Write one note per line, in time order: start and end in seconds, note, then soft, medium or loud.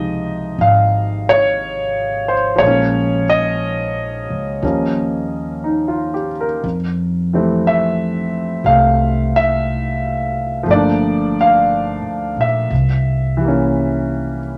0.00 0.54 C#2 medium
0.00 2.61 C3 soft
0.00 2.54 F3 soft
0.00 2.58 G#3 soft
0.00 2.62 D#4 soft
0.00 0.56 D#5 medium
0.58 2.57 G#1 medium
0.58 1.31 F5 medium
1.29 2.33 C#5 medium
2.28 2.58 C5 medium
2.56 4.60 F3 soft
2.56 4.62 G#3 soft
2.56 3.25 C#5 medium
2.60 4.26 A#1 medium
2.60 4.63 A#3 soft
2.67 4.63 C#4 medium
3.29 6.28 D#5 medium
4.30 4.60 C#2 soft
4.62 6.60 D#2 medium
4.62 6.64 F3 soft
4.62 6.64 G3 soft
4.62 6.64 A#3 soft
4.62 6.65 C#4 soft
5.64 6.12 D#4 soft
5.88 6.32 F4 soft
6.14 6.45 G4 soft
6.41 6.75 A#4 soft
6.64 8.62 F2 medium
7.33 10.68 E3 soft
7.33 8.63 G3 soft
7.33 8.67 A3 soft
7.33 10.69 C4 soft
7.67 8.70 E5 medium
8.64 10.63 C2 medium
8.64 10.68 G3 soft
8.64 10.66 A3 soft
8.64 9.37 F5 medium
9.36 10.65 E5 medium
10.63 11.98 G1 medium
10.63 12.68 F3 medium
10.63 12.70 A3 soft
10.71 12.72 A#3 soft
10.71 12.74 D4 medium
10.71 11.35 D5 medium
11.41 12.43 F5 medium
12.02 12.34 D2 soft
12.36 12.68 A#1 soft
12.41 14.39 E5 medium
12.70 14.58 C2 medium
13.37 14.58 E3 soft
13.37 14.58 G3 soft
13.44 14.58 A#3 soft
13.44 14.58 C#4 soft